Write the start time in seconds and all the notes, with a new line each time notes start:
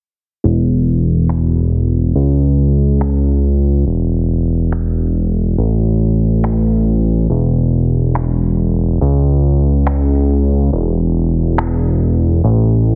0.44 E1
1.29 finger snap
2.16 C#2
3.01 finger snap
3.87 E1
4.72 finger snap
5.58 A1
6.44 finger snap
7.30 E1
8.15 finger snap
9.01 C#2
9.87 finger snap
10.73 E1
11.58 finger snap
12.44 A1